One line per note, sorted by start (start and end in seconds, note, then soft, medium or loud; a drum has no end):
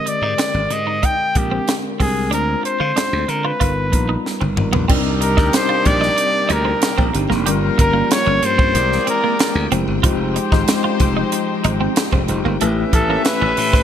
0.00 0.74 D3 medium
0.00 0.74 G#3 medium
0.00 0.74 C4 medium
0.00 0.74 G4 medium
0.00 0.74 A#4 medium
0.00 0.10 D#5 loud
0.06 0.74 D5 medium
0.06 muted clean electric guitar stroke soft
0.06 closed hi-hat medium
0.22 0.33 G#2 medium
0.22 0.34 D#4 medium
0.38 0.50 C4 medium
0.38 snare loud
0.38 closed hi-hat medium
0.54 0.66 G#1 medium
0.70 1.04 G#2 loud
0.70 1.06 D#5 medium
0.70 muted clean electric guitar stroke soft
0.70 closed hi-hat medium
0.87 0.98 D#4 medium
1.03 1.14 D#4 medium
1.03 1.39 G5 loud
1.03 kick medium
1.03 closed hi-hat medium
1.35 1.58 A#1 medium
1.35 1.85 G#3 medium
1.35 1.85 C4 medium
1.35 1.86 D4 medium
1.35 1.86 G4 medium
1.35 1.74 G4 medium
1.35 1.86 A#4 medium
1.35 muted clean electric guitar stroke soft
1.35 kick medium
1.35 closed hi-hat medium
1.51 1.63 C4 medium
1.68 snare loud
1.68 closed hi-hat medium
2.00 2.32 C2 medium
2.00 2.25 G#3 medium
2.00 2.11 C4 medium
2.00 2.25 C4 medium
2.00 2.25 D4 medium
2.00 2.25 G4 medium
2.00 2.31 G#4 medium
2.00 2.25 A#4 medium
2.00 kick medium
2.00 open hi-hat medium
2.31 2.54 D2 loud
2.31 3.31 G#3 medium
2.31 3.32 C4 medium
2.31 2.43 D4 medium
2.31 3.32 D4 medium
2.31 3.32 F4 medium
2.31 2.63 A#4 medium
2.31 3.32 C5 medium
2.31 closed hi-hat medium
2.63 3.31 C5 medium
2.63 muted clean electric guitar stroke soft
2.63 closed hi-hat medium
2.80 2.91 D3 medium
2.80 2.91 F4 medium
2.96 3.08 D4 medium
2.96 snare loud
2.96 closed hi-hat medium
3.13 3.24 D2 medium
3.28 3.51 D3 medium
3.28 3.48 A#4 medium
3.28 muted clean electric guitar stroke soft
3.28 closed hi-hat medium
3.45 3.56 F4 medium
3.45 4.26 B4 medium
3.60 3.93 G1 medium
3.60 3.87 G3 medium
3.60 3.87 B3 medium
3.60 3.87 D#4 medium
3.60 3.72 F4 medium
3.60 3.87 F4 medium
3.60 3.87 A#4 medium
3.60 kick medium
3.60 closed hi-hat medium
3.93 4.15 A#1 medium
3.93 4.43 G3 medium
3.93 4.43 B3 medium
3.93 4.43 D#4 medium
3.93 4.43 F4 medium
3.93 4.43 A#5 medium
3.93 muted clean electric guitar stroke soft
3.93 kick medium
3.93 closed hi-hat medium
4.09 4.20 D#4 medium
4.26 snare medium
4.41 4.58 G1 medium
4.41 4.52 C4 medium
4.41 high tom medium
4.57 4.69 G#1 medium
4.57 4.82 G3 medium
4.57 4.82 B3 medium
4.57 4.83 D#4 medium
4.57 4.83 F4 medium
4.57 4.83 A#4 medium
4.57 muted clean electric guitar stroke soft
4.57 mid tom medium
4.73 4.85 A#1 medium
4.73 4.84 B3 medium
4.73 floor tom medium
4.88 5.38 C2 loud
4.88 7.44 C3 medium
4.88 5.27 G3 loud
4.88 8.72 A#3 medium
4.88 5.00 C4 medium
4.88 5.27 C4 medium
4.88 7.45 C4 medium
4.88 7.11 D4 medium
4.88 5.27 D4 medium
4.88 7.11 D#4 medium
4.88 5.27 D#4 medium
4.88 7.11 G4 medium
4.88 5.27 A#4 loud
4.88 7.45 D5 medium
4.88 13.83 G5 medium
4.88 kick loud
4.88 crash medium
5.21 5.57 A#4 medium
5.21 muted clean electric guitar stroke soft
5.21 closed hi-hat medium
5.37 5.49 D2 medium
5.37 6.37 G3 medium
5.37 6.37 C4 medium
5.37 6.37 D4 medium
5.37 5.49 D#4 medium
5.37 6.38 D#4 medium
5.37 6.38 A#4 medium
5.37 kick loud
5.37 snare soft
5.53 5.88 C5 loud
5.53 snare loud
5.53 closed hi-hat loud
5.69 5.81 F4 medium
5.85 6.08 A#1 loud
5.85 6.54 D5 loud
5.85 muted clean electric guitar stroke soft
5.85 kick medium
5.85 closed hi-hat medium
6.01 6.13 D#4 medium
6.01 snare soft
6.16 muted clean electric guitar stroke medium
6.16 closed hi-hat medium
6.49 6.72 D2 medium
6.49 6.61 D#4 medium
6.49 7.16 A#4 medium
6.49 closed hi-hat medium
6.65 6.77 C4 medium
6.82 snare loud
6.82 closed hi-hat medium
6.98 7.09 A#1 medium
6.98 7.09 C4 medium
6.98 kick medium
7.14 7.26 G1 medium
7.14 7.39 G3 medium
7.14 7.40 C4 medium
7.14 7.40 D4 medium
7.14 7.40 D#4 medium
7.14 7.40 G4 medium
7.14 muted clean electric guitar stroke soft
7.14 closed hi-hat medium
7.30 7.47 F1 medium
7.30 7.41 A#3 medium
7.30 snare soft
7.46 7.69 G1 loud
7.46 8.74 F3 medium
7.46 7.57 G3 medium
7.46 7.84 G3 medium
7.46 8.74 G3 medium
7.46 8.42 G3 medium
7.46 7.84 A#3 medium
7.46 8.74 C#4 medium
7.46 7.84 C#4 medium
7.46 7.84 F4 medium
7.46 8.42 F4 medium
7.46 8.42 A#4 medium
7.46 7.85 A#4 medium
7.46 closed hi-hat loud
7.78 8.01 G1 loud
7.78 8.13 A#4 medium
7.78 muted clean electric guitar stroke soft
7.78 kick medium
7.78 closed hi-hat medium
7.94 8.75 G3 medium
7.94 8.05 A#3 medium
7.94 8.75 A#3 medium
7.94 8.75 C#4 medium
7.94 8.75 F4 medium
7.94 8.75 G4 medium
8.11 8.47 C#5 loud
8.11 snare loud
8.11 closed hi-hat medium
8.27 8.38 G1 medium
8.27 8.38 C#4 medium
8.42 8.76 G2 loud
8.42 9.09 C5 loud
8.42 muted clean electric guitar stroke soft
8.42 closed hi-hat medium
8.58 8.70 C4 medium
8.58 kick medium
8.75 8.97 C2 loud
8.75 10.03 E3 medium
8.75 9.52 G#3 medium
8.75 10.03 G#3 medium
8.75 9.70 A#3 medium
8.75 10.03 A#3 medium
8.75 9.52 C4 medium
8.75 12.58 C4 medium
8.75 9.53 E4 medium
8.75 9.53 G4 medium
8.75 9.70 G#4 medium
8.75 9.53 A#4 medium
8.75 9.70 D5 loud
8.75 muted clean electric guitar stroke soft
8.75 closed hi-hat medium
8.92 snare soft
9.07 9.18 C4 medium
9.07 9.69 A#4 medium
9.07 closed hi-hat medium
9.24 9.35 A#3 medium
9.39 snare loud
9.39 closed hi-hat medium
9.55 9.66 D2 medium
9.71 9.83 F1 medium
9.71 9.96 G#3 medium
9.71 9.97 C4 medium
9.71 9.83 C4 medium
9.71 9.97 E4 medium
9.71 9.97 G4 medium
9.71 9.97 C5 medium
9.71 closed hi-hat medium
9.87 9.99 G1 medium
10.03 10.37 F1 loud
10.03 12.59 F3 medium
10.03 12.25 G#3 medium
10.03 10.41 G#3 loud
10.03 12.59 G#3 medium
10.03 10.41 D#4 medium
10.03 12.59 D#4 medium
10.03 10.15 F4 medium
10.03 10.41 F4 medium
10.03 12.25 G4 medium
10.03 10.41 G4 medium
10.03 12.25 C5 medium
10.03 10.42 C5 loud
10.03 kick loud
10.03 closed hi-hat loud
10.36 muted clean electric guitar stroke medium
10.36 closed hi-hat medium
10.52 10.63 G#1 medium
10.52 11.52 G#3 loud
10.52 10.63 D#4 medium
10.52 11.52 D#4 medium
10.52 11.52 F4 medium
10.52 11.52 G4 medium
10.52 11.52 C5 loud
10.52 kick loud
10.52 snare soft
10.68 snare loud
10.68 closed hi-hat loud
10.84 10.95 F4 medium
11.00 11.22 F1 medium
11.00 muted clean electric guitar stroke soft
11.00 kick medium
11.00 closed hi-hat medium
11.17 11.28 D#4 medium
11.32 muted clean electric guitar stroke soft
11.32 closed hi-hat medium
11.64 11.87 G#1 loud
11.64 11.76 D#4 medium
11.64 closed hi-hat medium
11.81 11.92 C4 medium
11.96 snare loud
11.96 closed hi-hat medium
12.12 12.23 F1 medium
12.12 12.24 C4 medium
12.12 kick medium
12.28 12.40 F1 medium
12.28 12.53 G#3 medium
12.28 12.53 D#4 medium
12.28 12.54 F4 medium
12.28 12.54 G4 medium
12.28 12.54 C5 medium
12.28 muted clean electric guitar stroke soft
12.28 closed hi-hat medium
12.45 12.56 G1 loud
12.45 12.56 A#3 medium
12.61 12.83 A1 loud
12.61 13.83 E3 medium
12.61 12.98 A3 loud
12.61 12.73 A3 medium
12.61 13.83 A3 medium
12.61 13.83 B3 medium
12.61 12.98 C#4 medium
12.61 13.83 C#4 medium
12.61 12.98 E4 medium
12.61 12.99 G4 medium
12.61 12.99 B4 loud
12.61 13.83 B4 medium
12.61 13.83 E5 loud
12.61 closed hi-hat medium
12.93 13.15 A1 loud
12.93 13.24 A4 medium
12.93 muted clean electric guitar stroke soft
12.93 kick medium
12.93 closed hi-hat medium
13.09 13.83 A3 medium
13.09 13.21 A#3 medium
13.09 13.83 C#4 medium
13.09 13.83 E4 medium
13.09 13.83 G4 medium
13.09 13.83 C#5 medium
13.25 13.83 B4 medium
13.25 snare loud
13.25 closed hi-hat medium
13.42 13.53 A1 medium
13.42 13.53 C#4 medium
13.57 13.80 A2 loud
13.57 muted clean electric guitar stroke soft
13.57 open hi-hat medium
13.73 13.83 C4 medium
13.73 kick loud
13.73 snare soft